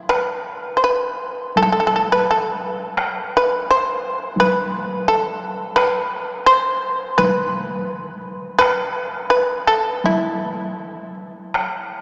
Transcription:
0.09 B4, taiko rim
0.77 C5
0.84 B4
1.56 A4, taiko high
1.63 A4
1.72 A4
1.80 A4
1.87 A4
1.96 A4
2.12 B4
2.31 A4
2.97 taiko rim
3.37 B4
3.71 C5
4.36 B4, taiko high
5.08 A4
5.76 B4, taiko rim
6.46 C5
7.18 B4, taiko high
8.59 B4, taiko rim
9.30 B4
9.67 A4
10.04 E4, taiko high
11.54 taiko rim

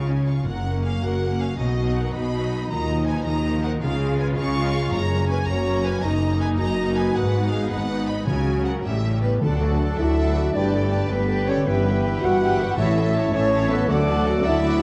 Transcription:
Already playing: C#2 C#3 C#4 G#4
0.08 C#4 C#5 G#5
0.27 F4 G#4 F5 C#6
0.45 F#1 F#2 A#4 F#5
0.65 A#3 C#4
0.83 G#4 A#4 F5
1.02 F#1 F#2 F#4 A#4 F#5
1.21 A#3 C#4 A#4
1.39 F#4 G#4 F5
1.57 B1 B2 F#3 D#4 F#4 D#5
1.77 F#3 D#4
1.94 D#5 F#5
1.98 A#4
2.13 B1 B2 D#5 F#5 B5
2.32 F#3 D#4 D#5
2.51 F#4
2.69 D#2 D#3 F4 D#5 A#5
2.89 F3 D#4
3.07 B4 D#5 G#5
3.24 D#2 D#3 D#4 D#5 F5 A#5
3.44 F3 D#4 D#5
3.63 F4 A#4 F#5
3.81 C#2 C#3 G#3 F4 G#4 F5
4.00 G#3 F4
4.19 B4 C#5 G#5
4.35 C#2 C#3 G#4 F5 G#5 C#6
4.55 G#3 F4 C#5
4.74 G#4
4.91 F#1 F#2 C#5 A#5
5.11 A#3 C#4 F#4
5.28 B4 C#5 G#5
5.46 F#1 F#2 F#4 C#5 A#5
5.67 A#3 C#4 C#5
5.85 A#4 B4 G#5
6.02 F#1 F#2 A#3 D#4 D#5 A#5
6.22 A#3 D#4
6.40 B4 D#5 G#5
6.58 F#1 F#2 F#4 D#5 A#5
6.79 A#3 D#4 D#5
6.95 A#4 B4 G#5
7.14 G#1 G#2 B4 F#5
7.35 B3 D#4
7.50 G#4 D#5 F5
7.70 G#1 G#2 D#4 B4 F#5 B5
7.91 B3 D#4 D#5
8.08 B4 D#5 B5
8.26 C#2 C#3 F#3 C#4 C#5 G#5
8.31 F#4
8.47 F#3 C#4 F#4
8.65 G#4 A#4 C#5 F#5
8.84 A1 A2 G3 C#4 E4 G4 E5
9.04 G3 C#4 G4
9.22 B3 A4 B4 C#5
9.41 D2 D3 F#3 A3 D4 A4 F#5 A5
9.51 A3
9.62 F#4 D5 F#5
9.71 A4
9.80 D4 A4 D5 F#5 A5
9.90 F#5
9.97 D2 E4 F#4 D5 E5 F#5 A5
10.09 D6
10.17 D4 A4 F#5 A5
10.27 F#5
10.35 F#4 A4 D5 F#5
10.44 A3
10.52 G1 G2 D3 A3 D4 B4 D5 G5 A5
10.56 G4
10.63 D3
10.72 B3 G4 A4 D5 G5
10.90 G4 B4 G5 A5
11.00 A4
11.09 G1 G2 D3 A3 B3 G4 A4 B4 D5 G5 A5
11.19 B5
11.27 G4 B4 G5 A5
11.38 B4
11.47 C#4 G4 A4 C#5 D5 G5
11.57 D3
11.65 G1 G2 E3 G3 B3 G4 B4 E5 G5
11.75 G3
11.85 B3 G4 B4 E5 G5
11.95 E4
12.03 G4 B4 E5 G5
12.13 E4
12.22 G1 G2 F#4 G4 B4 E5 F#5 G5
12.32 B5
12.41 G4 B4 E5 G5
12.50 B4
12.59 E4 G4 B4 E5 G5
12.69 G3
12.77 A1 A2 E3 A3 E4 C#5 E5 A5
12.87 E3
12.96 C#4 A4 E5 A5
13.06 E4
13.15 E4 C#5 E5 A5
13.24 C#5
13.32 A1 A2 E3 A3 C#4 A4 C#5 E5 A5
13.43 A5
13.52 E4 C#5 E5 A5
13.68 B3 E4 A4 B4 E5 A5
13.80 E3
13.88 D2 D3 F#3 A3 F#4 A4 D5 F#5
13.98 A3
14.07 D4 A4 D5 F#5 A5
14.17 F#4
14.25 F#4 A4 D5 F#5
14.43 D2 E4 A4 D5 E5 F#5 A5
14.54 A5
14.62 F#4 D5 F#5
14.73 D5

